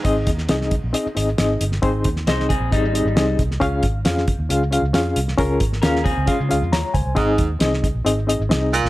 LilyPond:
<<
  \new Staff \with { instrumentName = "Reed electric piano" } { \time 4/4 \key aes \major \tempo 4 = 135 << { r1 | r1 | r1 | r2. <des'' bes''>8 <c'' aes''>8~ |
<c'' aes''>8 r2. r8 | } \\ { <c' ees' aes' ees''>8 r8 <c' ees' aes' ees''>8 r8 <c' ees' aes' ees''>8 <c' ees' aes' ees''>8 <c' ees' aes' ees''>8 r8 | <c' ees' aes' c''>8 r8 <c' ees' aes' ees''>8 r8 <c' ees' aes' ees''>8 <c' ees' aes' ees''>8 <c' ees' aes' ees''>8 r8 | <des' f' aes' f''>8 r8 <des' f' aes' f''>8 r8 <des' f' aes' f''>8 <des' f' aes' f''>8 <des' f' aes' f''>8 r8 | <des' f' aes' bes'>8 r8 <des' f' aes' f''>8 r8 <des' f' aes' f''>8 <des' f' aes' f''>8 r4 |
<c' ees' aes' ees''>8 r8 <c' ees' aes' ees''>8 r8 <c' ees' aes' ees''>8 <c' ees' aes' ees''>8 <c' ees' aes' ees''>8 r8 | } >> }
  \new Staff \with { instrumentName = "Clean electric guitar" } { \time 4/4 \key aes \major r1 | r4 <ees' c''>8 <c' aes'>8 <g ees'>4. r8 | r1 | r4 <des' bes'>8 <c' aes'>8 <aes f'>4. r8 |
r1 | }
  \new Staff \with { instrumentName = "Baritone saxophone" } { \clef bass \time 4/4 \key aes \major r1 | r1 | r1 | r1 |
aes,8. r2 r8. bes,8 | }
  \new Staff \with { instrumentName = "Fingered electric bass" } { \clef bass \time 4/4 \key aes \major aes,,8 ees,8 c,8. bes,,16 r8 aes,,8 aes,,8 g,,8 | aes,,8 ees,8 c,8. bes,,16 aes,,8. aes,,16 c,8 c,8 | des,8 aes,,8 f,8. ees,16 des,8. des,16 f,8 c,8 | des,8 aes,,8 ees,8. des,16 r16 des16 des,16 f,16 ees,16 r16 des,16 c,16 |
aes,,8 ees,8 c,8. bes,,16 aes,,8. aes,,16 c,8. bes,,16 | }
  \new DrumStaff \with { instrumentName = "Drums" } \drummode { \time 4/4 <hh bd>8 <hh bd>16 sn16 <hh sn>16 sn16 <hh bd>8 hh8 hh8 <hh sn>8 hh16 sn16 | <hh bd>8 <hh bd>16 sn16 <hh sn>16 sn16 <hh bd>8 <hh bd>8 hh8 <hh sn>8 <hh bd>16 sn16 | <hh bd>8 <hh bd>8 <hh sn>16 sn16 <hh bd>8 hh8 hh8 <hh sn>8 hh16 sn16 | <hh bd>8 <hh bd>16 sn16 <hh sn>16 sn16 <hh bd>8 <hh bd>8 hh8 <hh sn>8 <hh bd>8 |
<hh bd>8 <hh bd>8 <hh sn>16 sn16 <hh bd>8 hh8 hh8 <hh sn>8 hh16 sn16 | }
>>